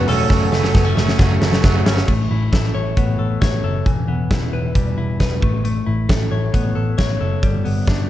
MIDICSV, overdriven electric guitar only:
0, 0, Header, 1, 2, 480
1, 0, Start_track
1, 0, Tempo, 445104
1, 328, Time_signature, 4, 2, 24, 8
1, 8732, End_track
2, 0, Start_track
2, 0, Title_t, "Overdriven electric guitar"
2, 0, Program_c, 0, 29
2, 0, Note_on_c, 0, 42, 60
2, 0, Note_on_c, 0, 49, 63
2, 0, Note_on_c, 0, 54, 72
2, 0, Note_on_c, 0, 57, 72
2, 0, Note_on_c, 0, 61, 75
2, 305, Note_off_c, 0, 49, 0
2, 314, Note_off_c, 0, 54, 0
2, 318, Note_on_c, 0, 49, 59
2, 324, Note_off_c, 0, 61, 0
2, 326, Note_off_c, 0, 57, 0
2, 327, Note_on_c, 0, 54, 64
2, 335, Note_off_c, 0, 42, 0
2, 338, Note_on_c, 0, 57, 62
2, 346, Note_on_c, 0, 61, 69
2, 656, Note_off_c, 0, 61, 0
2, 669, Note_on_c, 0, 61, 68
2, 677, Note_off_c, 0, 57, 0
2, 682, Note_off_c, 0, 49, 0
2, 686, Note_off_c, 0, 54, 0
2, 690, Note_on_c, 0, 57, 52
2, 702, Note_on_c, 0, 54, 54
2, 897, Note_off_c, 0, 61, 0
2, 910, Note_on_c, 0, 61, 72
2, 917, Note_off_c, 0, 57, 0
2, 929, Note_on_c, 0, 57, 62
2, 931, Note_off_c, 0, 54, 0
2, 943, Note_on_c, 0, 54, 50
2, 1275, Note_off_c, 0, 54, 0
2, 1276, Note_on_c, 0, 49, 69
2, 1277, Note_off_c, 0, 61, 0
2, 1287, Note_off_c, 0, 57, 0
2, 1288, Note_on_c, 0, 54, 69
2, 1297, Note_on_c, 0, 57, 76
2, 1305, Note_on_c, 0, 61, 76
2, 1628, Note_off_c, 0, 61, 0
2, 1636, Note_off_c, 0, 57, 0
2, 1639, Note_off_c, 0, 49, 0
2, 1641, Note_on_c, 0, 61, 80
2, 1642, Note_off_c, 0, 54, 0
2, 1649, Note_on_c, 0, 57, 73
2, 1655, Note_on_c, 0, 54, 75
2, 1661, Note_on_c, 0, 49, 71
2, 1662, Note_on_c, 0, 42, 67
2, 1868, Note_off_c, 0, 61, 0
2, 1873, Note_off_c, 0, 57, 0
2, 1881, Note_on_c, 0, 61, 75
2, 1882, Note_off_c, 0, 54, 0
2, 1885, Note_off_c, 0, 49, 0
2, 1886, Note_on_c, 0, 57, 77
2, 1890, Note_off_c, 0, 42, 0
2, 1895, Note_on_c, 0, 54, 76
2, 1898, Note_on_c, 0, 49, 70
2, 1903, Note_on_c, 0, 42, 60
2, 2242, Note_off_c, 0, 61, 0
2, 2245, Note_off_c, 0, 57, 0
2, 2249, Note_off_c, 0, 54, 0
2, 2250, Note_off_c, 0, 49, 0
2, 2253, Note_off_c, 0, 42, 0
2, 8732, End_track
0, 0, End_of_file